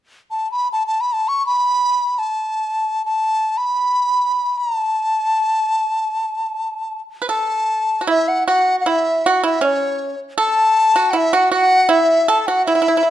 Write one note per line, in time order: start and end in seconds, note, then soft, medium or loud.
0.31 0.50 A5 medium
0.52 0.68 B5 medium
0.73 0.86 A5 medium
0.87 1.02 A5 medium
1.01 1.14 B5 medium
1.13 1.30 A5 medium
1.28 1.46 C#6 medium
1.46 2.20 B5 medium
2.18 3.05 A5 medium
3.05 3.59 A5 medium
3.58 4.59 B5 medium
4.58 4.77 A#5 medium
4.77 7.01 A5 medium
7.22 7.28 B4 medium
7.29 7.96 A4 medium
7.29 8.04 A5 medium
8.01 8.08 F#4 soft
8.07 8.44 E4 medium
8.07 8.30 E5 medium
8.28 8.46 F#5 medium
8.47 8.83 F#4 medium
8.47 8.76 F#5 medium
8.80 8.90 F#5 medium
8.86 9.22 E4 medium
8.86 9.28 E5 medium
9.26 9.43 F#4 medium
9.26 9.44 F#5 medium
9.43 9.61 E4 medium
9.43 9.66 E5 medium
9.61 10.14 C#4 medium
9.61 10.20 C#5 medium
10.38 10.91 A4 medium
10.38 11.12 A5 medium
10.96 11.13 F#4 medium
11.11 11.31 E4 medium
11.11 11.18 F#5 medium
11.17 11.36 E5 medium
11.33 11.50 F#4 medium
11.33 11.52 F#5 medium
11.52 11.87 F#4 medium
11.52 11.92 F#5 medium
11.89 12.24 E4 medium
11.89 12.31 E5 medium
12.28 12.46 A4 medium
12.28 12.41 A5 medium
12.41 12.49 A5 soft
12.47 12.65 F#4 medium
12.47 12.65 F#5 medium
12.66 12.74 E4 medium
12.66 13.10 E5 medium
12.75 12.81 E4 soft
12.82 12.87 E4 medium
12.88 12.95 E4 soft
12.97 13.02 E4 soft
13.03 13.10 E4 soft